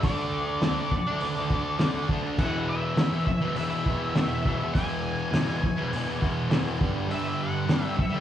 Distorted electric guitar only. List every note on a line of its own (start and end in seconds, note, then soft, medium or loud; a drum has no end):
0.03 0.60 D3 loud
0.03 0.63 A3 loud
0.03 0.64 D4 loud
0.61 0.91 D3 loud
0.61 0.79 A3 loud
0.66 0.75 D4 loud
0.76 0.92 D4 medium
0.80 0.91 A3 medium
0.92 muted distorted electric guitar stroke soft
1.06 1.23 D4 medium
1.11 1.21 A3 medium
1.20 1.49 D3 medium
1.20 1.38 A3 medium
1.24 1.34 D4 medium
1.35 1.51 A3 medium
1.35 1.53 D4 medium
1.50 1.78 D3 medium
1.50 1.80 A3 medium
1.54 1.82 D4 medium
1.79 2.07 D3 medium
1.79 1.97 A3 loud
1.83 1.93 D4 loud
1.94 2.11 D4 medium
1.98 2.09 A3 medium
2.09 2.37 D3 medium
2.09 2.25 A3 medium
2.09 2.21 D4 medium
2.23 2.36 D4 medium
2.27 2.38 A3 medium
2.37 2.96 E2 medium
2.37 2.98 B2 loud
2.41 3.00 E3 loud
2.96 3.26 E2 loud
2.96 3.13 B2 loud
3.01 3.09 E3 loud
3.10 3.27 E3 medium
3.15 3.27 B2 medium
3.27 muted distorted electric guitar stroke soft
3.41 3.55 B2 medium
3.41 3.57 E3 medium
3.54 3.84 E2 medium
3.54 3.73 B2 medium
3.59 3.69 E3 medium
3.70 3.88 E3 medium
3.74 3.87 B2 medium
3.85 4.13 E2 medium
3.85 4.16 B2 medium
3.89 4.18 E3 medium
4.14 4.44 E2 medium
4.14 4.32 B2 medium
4.19 4.27 E3 loud
4.29 4.48 E3 medium
4.33 4.46 B2 medium
4.45 4.73 E2 medium
4.45 4.63 B2 medium
4.49 4.58 E3 medium
4.60 4.77 E3 medium
4.64 4.75 B2 medium
4.74 5.31 E2 loud
4.74 5.33 B2 loud
4.74 5.34 E3 loud
5.32 5.61 E2 loud
5.32 5.49 B2 loud
5.32 5.45 E3 loud
5.46 5.62 E3 medium
5.51 5.62 B2 medium
5.63 muted distorted electric guitar stroke medium
5.77 5.92 B2 medium
5.77 5.94 E3 medium
5.91 6.19 E2 medium
5.91 6.09 B2 medium
5.95 6.05 E3 medium
6.06 6.23 E3 medium
6.10 6.21 B2 medium
6.21 6.49 E2 medium
6.21 6.50 B2 medium
6.21 6.52 E3 loud
6.50 6.78 E2 loud
6.50 6.67 B2 loud
6.50 6.64 E3 loud
6.65 6.80 B2 medium
6.65 6.78 E3 medium
6.78 7.06 G2 medium
6.78 6.96 D3 loud
6.83 6.92 G3 loud
6.93 7.11 G3 medium
6.97 7.09 D3 medium
7.08 7.65 G2 loud
7.08 7.67 D3 loud
7.12 7.69 G3 loud
7.66 7.96 G2 loud
7.66 7.84 D3 loud
7.70 7.79 G3 loud
7.81 7.96 G3 medium
7.85 7.96 D3 medium
7.97 muted distorted electric guitar stroke medium
8.10 8.20 G3 medium
8.14 8.20 D3 medium